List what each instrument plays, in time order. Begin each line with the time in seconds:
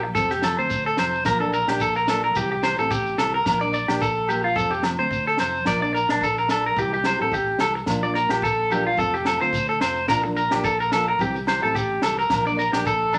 Already playing: fingered electric bass A#1
0.03 muted clean electric guitar stroke
0.14 fingered electric bass F1, nylon-string guitar F3 A3 C4, clean electric guitar A4, kick, snare, shekere
0.30 clean electric guitar G4, snare, shekere
0.42 nylon-string guitar F3 A3 C4, clean electric guitar A4, snare, low agogo, shekere
0.58 fingered electric bass D2, nylon-string guitar A3 C4, clean electric guitar C5
0.70 kick, shekere
0.86 clean electric guitar A4
0.97 fingered electric bass F1, nylon-string guitar F3 A3 C4, clean electric guitar C5, snare, low agogo, shekere
1.13 shekere
1.25 fingered electric bass A#1, nylon-string guitar F3 A#3, clean electric guitar A#4, muted nylon-string guitar stroke, kick, snare, low agogo, shekere
1.39 nylon-string guitar A#3 D4, clean electric guitar A4
1.53 clean electric guitar A#4, shekere
1.68 fingered electric bass A#1, nylon-string guitar A#3 D4, clean electric guitar G4, snare, low agogo
1.80 clean electric guitar A4, kick, shekere
1.95 clean electric guitar A#4, shekere
2.08 nylon-string guitar F3 A#3 D4, clean electric guitar A4, snare, low agogo, shekere
2.24 clean electric guitar A#4
2.35 fingered electric bass C2, nylon-string guitar E3 C4 E4 G4, clean electric guitar G4, kick, shekere
2.52 clean electric guitar G4
2.62 nylon-string guitar E3 C4 E4 G4, clean electric guitar C5, snare, low agogo, shekere
2.78 fingered electric bass A1, nylon-string guitar C4 E4 G4, clean electric guitar A4, shekere
2.91 clean electric guitar G4, kick, shekere
3.06 shekere
3.18 fingered electric bass C2, nylon-string guitar E3 C4 E4 G4, clean electric guitar A4, snare, low agogo, shekere
3.34 clean electric guitar A#4
3.46 fingered electric bass A#1, nylon-string guitar F3 A#3 D4, kick, snare, low agogo, shekere
3.61 nylon-string guitar A#3 D4, clean electric guitar D5
3.73 clean electric guitar D5, shekere
3.88 fingered electric bass A#1, nylon-string guitar A#3 D4, clean electric guitar G4, snare, low agogo, shekere
4.01 clean electric guitar A4, kick, shekere
4.28 nylon-string guitar F3 A#3 D4, clean electric guitar G4, low agogo, shekere
4.44 clean electric guitar F4
4.56 fingered electric bass F1, nylon-string guitar F3 A3 C4, clean electric guitar A4, kick, shekere
4.71 clean electric guitar G4, shekere
4.83 nylon-string guitar F3 A3 C4, muted clean electric guitar stroke, snare, low agogo, shekere
4.99 fingered electric bass D2, nylon-string guitar A3 C4, clean electric guitar C5
5.11 kick, shekere
5.27 clean electric guitar A4
5.37 fingered electric bass F1, nylon-string guitar F3 A3 C4, clean electric guitar C5, snare, low agogo, shekere
5.55 shekere
5.65 fingered electric bass A#1, nylon-string guitar F3 A#3 D4, clean electric guitar D5, kick, snare, low agogo, shekere
5.81 nylon-string guitar A#3 D4, clean electric guitar D5
5.95 clean electric guitar A#4, shekere
6.09 fingered electric bass A#1, nylon-string guitar A#3 D4, clean electric guitar D4, snare, low agogo
6.21 clean electric guitar A4, kick, shekere
6.38 clean electric guitar A#4, shekere
6.49 nylon-string guitar F3 D4, clean electric guitar A4, muted nylon-string guitar stroke, snare, low agogo, shekere
6.66 clean electric guitar A#4
6.77 fingered electric bass C2, nylon-string guitar E3 C4 E4 G4, clean electric guitar G4, kick, shekere
6.93 clean electric guitar G4, shekere
7.04 nylon-string guitar C4 E4, clean electric guitar C5, snare, low agogo, shekere
7.08 nylon-string guitar G4
7.19 fingered electric bass A1, nylon-string guitar C4 E4 G4, clean electric guitar A4
7.32 clean electric guitar G4, kick, shekere
7.58 fingered electric bass C2, nylon-string guitar E3 E4 G4, clean electric guitar A4, muted nylon-string guitar stroke, snare, low agogo, shekere
7.75 muted clean electric guitar stroke, shekere
7.86 fingered electric bass A#1, nylon-string guitar F3 A#3 D4 F4, kick, snare, low agogo, shekere
8.03 nylon-string guitar A#3 D4 F4, clean electric guitar D5
8.14 clean electric guitar A#4, snare, shekere
8.29 fingered electric bass A#1, nylon-string guitar A#3 F4, clean electric guitar G4, muted nylon-string guitar stroke, snare, low agogo
8.42 clean electric guitar A4, kick, shekere
8.70 nylon-string guitar F3 A#3 D4 F4, clean electric guitar G4, low agogo, shekere
8.87 clean electric guitar F4
8.97 fingered electric bass F1, nylon-string guitar A3 C4 F4, clean electric guitar A4, kick, shekere
9.14 clean electric guitar G4, shekere
9.25 nylon-string guitar A3 C4 F4, clean electric guitar A4, snare, low agogo, shekere
9.40 fingered electric bass D2, nylon-string guitar C4 F4, clean electric guitar C5
9.53 kick, snare, shekere
9.69 clean electric guitar A4
9.81 fingered electric bass F1, nylon-string guitar A3 C4 F4, clean electric guitar C5, snare, low agogo, shekere
9.96 shekere
10.08 fingered electric bass A#1, nylon-string guitar F3 A#3 D4 F4, clean electric guitar A#4, kick, snare, low agogo, shekere
10.23 nylon-string guitar A#3 D4 F4, muted clean electric guitar stroke
10.37 clean electric guitar A#4, shekere
10.51 fingered electric bass A#1, nylon-string guitar A#3 D4 F4, clean electric guitar G4, snare, low agogo
10.64 clean electric guitar A4, kick, shekere
10.80 clean electric guitar A#4, shekere
10.92 nylon-string guitar F3 A#3 D4 F4, clean electric guitar A4, snare, low agogo, shekere
11.08 clean electric guitar A#4
11.19 fingered electric bass C2, nylon-string guitar E3 C4 E4 G4, clean electric guitar G4, kick, shekere
11.36 shekere
11.46 nylon-string guitar E3 C4 E4 G4, clean electric guitar C5, snare, low agogo, shekere
11.62 fingered electric bass A1, nylon-string guitar C4 E4 G4, clean electric guitar A4
11.75 clean electric guitar G4, kick, shekere
12.02 fingered electric bass C2, nylon-string guitar E3 C4 E4 G4, clean electric guitar A4, snare, low agogo, shekere
12.19 clean electric guitar A#4, shekere
12.30 fingered electric bass A#1, nylon-string guitar F3 A#3 D4, kick, snare, low agogo, shekere
12.46 nylon-string guitar A#3 D4, clean electric guitar D5, shekere
12.59 clean electric guitar A#4, shekere
12.73 fingered electric bass A#1, nylon-string guitar A#3 D4, clean electric guitar G4, snare, low agogo
12.85 clean electric guitar A4, kick, shekere
13.13 nylon-string guitar F3 A#3, clean electric guitar D4, low agogo, shekere